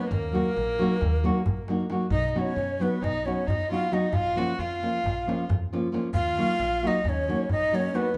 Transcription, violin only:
0.00 0.10 B3 medium
0.11 1.87 A#3 medium
2.12 2.26 D#4 medium
2.26 2.41 D#4 medium
2.39 2.84 C#4 medium
2.82 3.04 B3 medium
3.02 3.27 D#4 medium
3.26 3.48 C#4 medium
3.47 3.70 D#4 medium
3.71 3.94 F4 medium
3.93 4.17 D#4 medium
4.15 4.39 F4 medium
4.37 4.61 F#4 medium
4.59 5.50 F4 medium
6.15 6.89 F4 loud
6.87 7.10 D#4 medium
7.08 7.51 C#4 medium
7.54 7.80 D#4 medium
7.79 8.01 C#4 medium
7.99 8.17 B3 medium

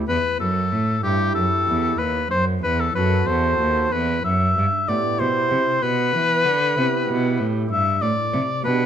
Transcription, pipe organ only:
0.09 0.37 E2 medium
0.41 0.70 F#2 medium
0.73 1.01 A2 medium
1.04 1.33 G2 medium
1.04 1.97 E4 soft
1.04 1.96 G4 medium
1.37 1.65 F#2 medium
1.69 1.97 E2 medium
2.01 2.29 D#2 medium
2.33 2.61 F#2 medium
2.64 2.92 E2 medium
2.96 3.24 F#2 medium
2.96 3.89 F#4 soft
2.96 3.89 A4 medium
3.27 3.56 E2 medium
3.60 3.90 D#2 medium
3.93 4.22 E2 medium
4.26 4.54 F#2 medium
4.58 4.86 G2 medium
4.89 5.17 A2 medium
4.89 5.47 B3 medium
4.89 5.79 E4 soft
4.89 5.79 G4 medium
5.20 5.48 B2 medium
5.51 5.79 C3 medium
5.83 6.11 B2 medium
5.83 6.45 B3 medium
6.15 6.43 E3 medium
6.45 6.74 D3 medium
6.76 7.05 C3 medium
6.76 7.36 B3 medium
6.76 7.67 E4 medium
6.76 7.67 G4 medium
7.08 7.37 B2 medium
7.39 7.68 A2 medium
7.71 7.99 G2 medium
8.03 8.31 A2 medium
8.34 8.62 C3 medium
8.65 8.86 B2 medium
8.65 8.86 D4 medium
8.65 8.86 G4 medium

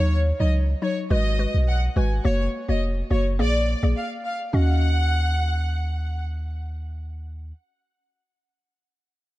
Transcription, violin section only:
0.00 0.14 C#5 loud
0.40 0.49 D#5 medium
0.82 0.92 C#5 medium
1.11 1.52 D#5 loud
1.68 1.77 F#5 medium
1.96 2.06 G#5 medium
2.25 2.43 C#5 loud
2.69 2.77 D#5 medium
3.11 3.20 C#5 medium
3.39 3.80 D5 loud
3.97 4.06 F5 medium
4.25 4.35 F5 medium
4.54 6.21 F#5 loud

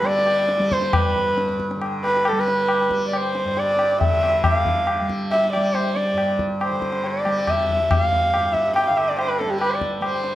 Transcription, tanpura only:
0.00 1.17 G2 medium
0.00 1.75 D3 medium
0.00 0.02 G3 medium
0.00 0.59 G3 medium
0.59 2.32 G3 medium
1.17 3.44 G2 medium
1.76 4.00 D3 medium
2.32 2.89 G3 medium
2.89 5.01 G3 medium
3.45 6.12 G2 medium
4.01 4.45 D3 medium
4.45 6.70 D3 medium
5.01 5.56 G3 medium
5.56 7.26 G3 medium
6.13 8.34 G2 medium
6.70 8.89 D3 medium
7.26 7.80 G3 medium
7.80 9.45 G3 medium
8.35 10.35 G2 medium
8.90 10.35 D3 medium
9.45 10.00 G3 medium
10.00 10.35 G3 medium

